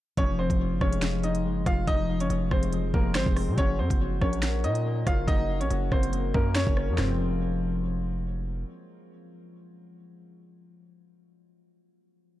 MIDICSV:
0, 0, Header, 1, 5, 480
1, 0, Start_track
1, 0, Tempo, 425532
1, 195, Time_signature, 4, 2, 24, 8
1, 13987, End_track
2, 0, Start_track
2, 0, Title_t, "Upright piano"
2, 0, Program_c, 0, 0
2, 199, Note_on_c, 0, 73, 100
2, 207, Note_on_c, 0, 61, 76
2, 396, Note_off_c, 0, 73, 0
2, 401, Note_off_c, 0, 61, 0
2, 438, Note_on_c, 0, 72, 83
2, 446, Note_on_c, 0, 60, 69
2, 888, Note_off_c, 0, 72, 0
2, 892, Note_off_c, 0, 60, 0
2, 915, Note_on_c, 0, 73, 79
2, 924, Note_on_c, 0, 61, 61
2, 1366, Note_off_c, 0, 73, 0
2, 1371, Note_off_c, 0, 61, 0
2, 1396, Note_on_c, 0, 75, 77
2, 1405, Note_on_c, 0, 63, 62
2, 1847, Note_off_c, 0, 75, 0
2, 1852, Note_off_c, 0, 63, 0
2, 1878, Note_on_c, 0, 77, 82
2, 1888, Note_on_c, 0, 65, 64
2, 2076, Note_off_c, 0, 77, 0
2, 2082, Note_off_c, 0, 65, 0
2, 2115, Note_on_c, 0, 75, 117
2, 2123, Note_on_c, 0, 63, 87
2, 2460, Note_off_c, 0, 75, 0
2, 2465, Note_off_c, 0, 63, 0
2, 2487, Note_on_c, 0, 73, 76
2, 2495, Note_on_c, 0, 61, 60
2, 2817, Note_off_c, 0, 73, 0
2, 2821, Note_off_c, 0, 61, 0
2, 2836, Note_on_c, 0, 72, 78
2, 2845, Note_on_c, 0, 60, 60
2, 3287, Note_off_c, 0, 72, 0
2, 3292, Note_off_c, 0, 60, 0
2, 3315, Note_on_c, 0, 70, 77
2, 3324, Note_on_c, 0, 58, 66
2, 3514, Note_off_c, 0, 70, 0
2, 3519, Note_off_c, 0, 58, 0
2, 3556, Note_on_c, 0, 72, 87
2, 3565, Note_on_c, 0, 60, 66
2, 4007, Note_off_c, 0, 72, 0
2, 4012, Note_off_c, 0, 60, 0
2, 4039, Note_on_c, 0, 73, 101
2, 4048, Note_on_c, 0, 61, 82
2, 4236, Note_off_c, 0, 73, 0
2, 4242, Note_off_c, 0, 61, 0
2, 4275, Note_on_c, 0, 72, 81
2, 4284, Note_on_c, 0, 60, 64
2, 4726, Note_off_c, 0, 72, 0
2, 4731, Note_off_c, 0, 60, 0
2, 4758, Note_on_c, 0, 73, 78
2, 4766, Note_on_c, 0, 61, 61
2, 5208, Note_off_c, 0, 73, 0
2, 5212, Note_off_c, 0, 61, 0
2, 5236, Note_on_c, 0, 75, 84
2, 5244, Note_on_c, 0, 63, 58
2, 5687, Note_off_c, 0, 75, 0
2, 5691, Note_off_c, 0, 63, 0
2, 5716, Note_on_c, 0, 77, 79
2, 5724, Note_on_c, 0, 65, 60
2, 5914, Note_off_c, 0, 77, 0
2, 5920, Note_off_c, 0, 65, 0
2, 5950, Note_on_c, 0, 75, 104
2, 5960, Note_on_c, 0, 63, 79
2, 6298, Note_off_c, 0, 75, 0
2, 6303, Note_off_c, 0, 63, 0
2, 6322, Note_on_c, 0, 73, 72
2, 6332, Note_on_c, 0, 61, 59
2, 6654, Note_off_c, 0, 73, 0
2, 6659, Note_off_c, 0, 61, 0
2, 6676, Note_on_c, 0, 72, 80
2, 6684, Note_on_c, 0, 60, 61
2, 7127, Note_off_c, 0, 72, 0
2, 7131, Note_off_c, 0, 60, 0
2, 7154, Note_on_c, 0, 70, 73
2, 7164, Note_on_c, 0, 58, 61
2, 7354, Note_off_c, 0, 70, 0
2, 7360, Note_off_c, 0, 58, 0
2, 7394, Note_on_c, 0, 73, 89
2, 7404, Note_on_c, 0, 61, 72
2, 7846, Note_off_c, 0, 73, 0
2, 7851, Note_off_c, 0, 61, 0
2, 7874, Note_on_c, 0, 60, 86
2, 9270, Note_off_c, 0, 60, 0
2, 13987, End_track
3, 0, Start_track
3, 0, Title_t, "Harp"
3, 0, Program_c, 1, 46
3, 194, Note_on_c, 1, 53, 98
3, 673, Note_on_c, 1, 65, 84
3, 915, Note_on_c, 1, 56, 100
3, 1144, Note_off_c, 1, 53, 0
3, 1157, Note_on_c, 1, 53, 82
3, 1392, Note_on_c, 1, 60, 80
3, 1623, Note_off_c, 1, 56, 0
3, 1637, Note_on_c, 1, 56, 91
3, 2095, Note_off_c, 1, 53, 0
3, 2108, Note_on_c, 1, 53, 89
3, 2594, Note_off_c, 1, 65, 0
3, 2599, Note_on_c, 1, 65, 82
3, 2816, Note_off_c, 1, 56, 0
3, 2829, Note_on_c, 1, 56, 93
3, 3061, Note_off_c, 1, 53, 0
3, 3075, Note_on_c, 1, 53, 78
3, 3312, Note_off_c, 1, 60, 0
3, 3317, Note_on_c, 1, 60, 79
3, 3542, Note_off_c, 1, 56, 0
3, 3555, Note_on_c, 1, 56, 97
3, 3789, Note_off_c, 1, 60, 0
3, 3793, Note_on_c, 1, 60, 84
3, 4040, Note_on_c, 1, 54, 99
3, 4091, Note_off_c, 1, 53, 0
3, 4091, Note_off_c, 1, 56, 0
3, 4108, Note_off_c, 1, 65, 0
3, 4517, Note_on_c, 1, 66, 79
3, 4756, Note_on_c, 1, 58, 97
3, 4973, Note_off_c, 1, 54, 0
3, 4987, Note_on_c, 1, 54, 72
3, 5234, Note_on_c, 1, 61, 85
3, 5302, Note_off_c, 1, 60, 0
3, 5473, Note_off_c, 1, 58, 0
3, 5477, Note_on_c, 1, 58, 90
3, 5697, Note_off_c, 1, 61, 0
3, 5702, Note_on_c, 1, 61, 82
3, 5943, Note_off_c, 1, 54, 0
3, 5957, Note_on_c, 1, 54, 90
3, 6429, Note_off_c, 1, 66, 0
3, 6434, Note_on_c, 1, 66, 81
3, 6668, Note_off_c, 1, 58, 0
3, 6673, Note_on_c, 1, 58, 97
3, 6897, Note_off_c, 1, 54, 0
3, 6911, Note_on_c, 1, 54, 77
3, 7150, Note_off_c, 1, 61, 0
3, 7155, Note_on_c, 1, 61, 86
3, 7388, Note_off_c, 1, 58, 0
3, 7392, Note_on_c, 1, 58, 87
3, 7630, Note_off_c, 1, 61, 0
3, 7635, Note_on_c, 1, 61, 82
3, 7808, Note_on_c, 1, 53, 86
3, 7853, Note_on_c, 1, 56, 82
3, 7876, Note_off_c, 1, 66, 0
3, 7898, Note_on_c, 1, 60, 78
3, 7932, Note_off_c, 1, 54, 0
3, 7943, Note_on_c, 1, 65, 98
3, 7966, Note_off_c, 1, 61, 0
3, 11019, Note_off_c, 1, 58, 0
3, 11609, Note_off_c, 1, 60, 0
3, 11654, Note_off_c, 1, 65, 0
3, 11740, Note_off_c, 1, 56, 0
3, 12121, Note_off_c, 1, 53, 0
3, 13987, End_track
4, 0, Start_track
4, 0, Title_t, "808-style bass"
4, 0, Program_c, 2, 38
4, 196, Note_on_c, 2, 29, 114
4, 548, Note_off_c, 2, 29, 0
4, 563, Note_on_c, 2, 29, 107
4, 803, Note_on_c, 2, 30, 103
4, 820, Note_off_c, 2, 29, 0
4, 910, Note_off_c, 2, 30, 0
4, 916, Note_on_c, 2, 29, 110
4, 1635, Note_on_c, 2, 30, 97
4, 1652, Note_off_c, 2, 29, 0
4, 1863, Note_off_c, 2, 30, 0
4, 1875, Note_on_c, 2, 29, 112
4, 2106, Note_off_c, 2, 29, 0
4, 2115, Note_on_c, 2, 29, 106
4, 2481, Note_on_c, 2, 30, 99
4, 2498, Note_off_c, 2, 29, 0
4, 2589, Note_off_c, 2, 30, 0
4, 2594, Note_on_c, 2, 29, 107
4, 2825, Note_off_c, 2, 29, 0
4, 2835, Note_on_c, 2, 29, 105
4, 3296, Note_off_c, 2, 29, 0
4, 3316, Note_on_c, 2, 29, 106
4, 3555, Note_on_c, 2, 32, 104
4, 3572, Note_off_c, 2, 29, 0
4, 3676, Note_off_c, 2, 32, 0
4, 3681, Note_on_c, 2, 29, 102
4, 3922, Note_on_c, 2, 48, 99
4, 3939, Note_off_c, 2, 29, 0
4, 4029, Note_off_c, 2, 48, 0
4, 4035, Note_on_c, 2, 30, 106
4, 4276, Note_on_c, 2, 42, 104
4, 4293, Note_off_c, 2, 30, 0
4, 4397, Note_off_c, 2, 42, 0
4, 4402, Note_on_c, 2, 30, 100
4, 4741, Note_off_c, 2, 30, 0
4, 4755, Note_on_c, 2, 34, 110
4, 5235, Note_on_c, 2, 46, 100
4, 5252, Note_off_c, 2, 34, 0
4, 5691, Note_off_c, 2, 46, 0
4, 5715, Note_on_c, 2, 30, 110
4, 5945, Note_off_c, 2, 30, 0
4, 5954, Note_on_c, 2, 30, 105
4, 6321, Note_on_c, 2, 34, 96
4, 6338, Note_off_c, 2, 30, 0
4, 6429, Note_off_c, 2, 34, 0
4, 6435, Note_on_c, 2, 30, 106
4, 6665, Note_off_c, 2, 30, 0
4, 6674, Note_on_c, 2, 30, 104
4, 7135, Note_off_c, 2, 30, 0
4, 7155, Note_on_c, 2, 42, 104
4, 7508, Note_off_c, 2, 42, 0
4, 7521, Note_on_c, 2, 30, 110
4, 7763, Note_on_c, 2, 42, 100
4, 7780, Note_off_c, 2, 30, 0
4, 7870, Note_off_c, 2, 42, 0
4, 7875, Note_on_c, 2, 29, 107
4, 9750, Note_off_c, 2, 29, 0
4, 13987, End_track
5, 0, Start_track
5, 0, Title_t, "Drums"
5, 195, Note_on_c, 9, 42, 75
5, 196, Note_on_c, 9, 36, 111
5, 308, Note_off_c, 9, 42, 0
5, 309, Note_off_c, 9, 36, 0
5, 563, Note_on_c, 9, 36, 96
5, 567, Note_on_c, 9, 42, 91
5, 676, Note_off_c, 9, 36, 0
5, 680, Note_off_c, 9, 42, 0
5, 915, Note_on_c, 9, 36, 92
5, 916, Note_on_c, 9, 37, 96
5, 1028, Note_off_c, 9, 36, 0
5, 1029, Note_off_c, 9, 37, 0
5, 1044, Note_on_c, 9, 42, 92
5, 1147, Note_on_c, 9, 26, 94
5, 1154, Note_off_c, 9, 42, 0
5, 1154, Note_on_c, 9, 38, 112
5, 1154, Note_on_c, 9, 42, 90
5, 1260, Note_off_c, 9, 26, 0
5, 1267, Note_off_c, 9, 38, 0
5, 1267, Note_off_c, 9, 42, 0
5, 1393, Note_on_c, 9, 42, 78
5, 1506, Note_off_c, 9, 42, 0
5, 1519, Note_on_c, 9, 42, 79
5, 1632, Note_off_c, 9, 42, 0
5, 1875, Note_on_c, 9, 36, 98
5, 1875, Note_on_c, 9, 37, 92
5, 1876, Note_on_c, 9, 42, 88
5, 1988, Note_off_c, 9, 36, 0
5, 1988, Note_off_c, 9, 37, 0
5, 1989, Note_off_c, 9, 42, 0
5, 2114, Note_on_c, 9, 42, 77
5, 2115, Note_on_c, 9, 36, 111
5, 2227, Note_off_c, 9, 42, 0
5, 2228, Note_off_c, 9, 36, 0
5, 2486, Note_on_c, 9, 42, 92
5, 2596, Note_off_c, 9, 42, 0
5, 2596, Note_on_c, 9, 42, 89
5, 2709, Note_off_c, 9, 42, 0
5, 2835, Note_on_c, 9, 36, 93
5, 2835, Note_on_c, 9, 37, 92
5, 2948, Note_off_c, 9, 36, 0
5, 2948, Note_off_c, 9, 37, 0
5, 2964, Note_on_c, 9, 42, 93
5, 3074, Note_off_c, 9, 42, 0
5, 3074, Note_on_c, 9, 42, 81
5, 3187, Note_off_c, 9, 42, 0
5, 3316, Note_on_c, 9, 36, 104
5, 3429, Note_off_c, 9, 36, 0
5, 3548, Note_on_c, 9, 26, 89
5, 3552, Note_on_c, 9, 42, 77
5, 3555, Note_on_c, 9, 38, 115
5, 3661, Note_off_c, 9, 26, 0
5, 3665, Note_off_c, 9, 42, 0
5, 3668, Note_off_c, 9, 38, 0
5, 3681, Note_on_c, 9, 36, 93
5, 3794, Note_off_c, 9, 36, 0
5, 3795, Note_on_c, 9, 37, 91
5, 3796, Note_on_c, 9, 46, 61
5, 3908, Note_off_c, 9, 37, 0
5, 3909, Note_off_c, 9, 46, 0
5, 4034, Note_on_c, 9, 42, 78
5, 4035, Note_on_c, 9, 36, 112
5, 4147, Note_off_c, 9, 42, 0
5, 4148, Note_off_c, 9, 36, 0
5, 4402, Note_on_c, 9, 36, 96
5, 4406, Note_on_c, 9, 42, 91
5, 4515, Note_off_c, 9, 36, 0
5, 4519, Note_off_c, 9, 42, 0
5, 4755, Note_on_c, 9, 36, 96
5, 4755, Note_on_c, 9, 37, 96
5, 4867, Note_off_c, 9, 36, 0
5, 4868, Note_off_c, 9, 37, 0
5, 4883, Note_on_c, 9, 42, 92
5, 4987, Note_on_c, 9, 26, 92
5, 4994, Note_off_c, 9, 42, 0
5, 4994, Note_on_c, 9, 38, 120
5, 4994, Note_on_c, 9, 42, 91
5, 5100, Note_off_c, 9, 26, 0
5, 5107, Note_off_c, 9, 38, 0
5, 5107, Note_off_c, 9, 42, 0
5, 5234, Note_on_c, 9, 42, 78
5, 5346, Note_off_c, 9, 42, 0
5, 5359, Note_on_c, 9, 42, 80
5, 5472, Note_off_c, 9, 42, 0
5, 5715, Note_on_c, 9, 36, 98
5, 5715, Note_on_c, 9, 37, 93
5, 5715, Note_on_c, 9, 42, 88
5, 5828, Note_off_c, 9, 36, 0
5, 5828, Note_off_c, 9, 37, 0
5, 5828, Note_off_c, 9, 42, 0
5, 5954, Note_on_c, 9, 42, 77
5, 5955, Note_on_c, 9, 36, 108
5, 6067, Note_off_c, 9, 42, 0
5, 6068, Note_off_c, 9, 36, 0
5, 6326, Note_on_c, 9, 42, 90
5, 6435, Note_off_c, 9, 42, 0
5, 6435, Note_on_c, 9, 42, 91
5, 6548, Note_off_c, 9, 42, 0
5, 6674, Note_on_c, 9, 36, 88
5, 6674, Note_on_c, 9, 37, 91
5, 6787, Note_off_c, 9, 36, 0
5, 6787, Note_off_c, 9, 37, 0
5, 6802, Note_on_c, 9, 42, 90
5, 6914, Note_off_c, 9, 42, 0
5, 6914, Note_on_c, 9, 42, 85
5, 7026, Note_off_c, 9, 42, 0
5, 7156, Note_on_c, 9, 36, 100
5, 7269, Note_off_c, 9, 36, 0
5, 7387, Note_on_c, 9, 26, 90
5, 7391, Note_on_c, 9, 42, 78
5, 7394, Note_on_c, 9, 38, 112
5, 7500, Note_off_c, 9, 26, 0
5, 7504, Note_off_c, 9, 42, 0
5, 7507, Note_off_c, 9, 38, 0
5, 7521, Note_on_c, 9, 36, 93
5, 7634, Note_off_c, 9, 36, 0
5, 7635, Note_on_c, 9, 37, 89
5, 7748, Note_off_c, 9, 37, 0
5, 7875, Note_on_c, 9, 38, 107
5, 7875, Note_on_c, 9, 39, 87
5, 7875, Note_on_c, 9, 43, 108
5, 7988, Note_off_c, 9, 38, 0
5, 7988, Note_off_c, 9, 39, 0
5, 7988, Note_off_c, 9, 43, 0
5, 13987, End_track
0, 0, End_of_file